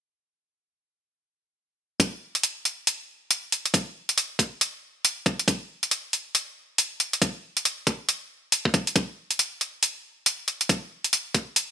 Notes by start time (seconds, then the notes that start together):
2.00 kick, closed hi-hat
2.35 closed hi-hat
2.43 closed hi-hat
2.65 closed hi-hat
2.87 closed hi-hat
3.31 closed hi-hat
3.52 closed hi-hat
3.65 closed hi-hat
3.74 kick, closed hi-hat
4.09 closed hi-hat
4.18 closed hi-hat
4.39 kick, closed hi-hat
4.61 closed hi-hat
5.05 closed hi-hat
5.26 kick, closed hi-hat
5.39 closed hi-hat
5.48 kick, closed hi-hat
5.83 closed hi-hat
5.91 closed hi-hat
6.13 closed hi-hat
6.35 closed hi-hat
6.78 closed hi-hat
7.00 closed hi-hat
7.13 closed hi-hat
7.22 kick, closed hi-hat
7.57 closed hi-hat
7.65 closed hi-hat
7.87 kick, closed hi-hat
8.09 closed hi-hat
8.52 closed hi-hat
8.65 kick
8.74 kick, closed hi-hat
8.87 closed hi-hat
8.96 kick, closed hi-hat
9.31 closed hi-hat
9.39 closed hi-hat
9.61 closed hi-hat
9.83 closed hi-hat
10.26 closed hi-hat
10.48 closed hi-hat
10.61 closed hi-hat
10.69 kick, closed hi-hat
11.04 closed hi-hat
11.13 closed hi-hat
11.34 kick, closed hi-hat
11.56 closed hi-hat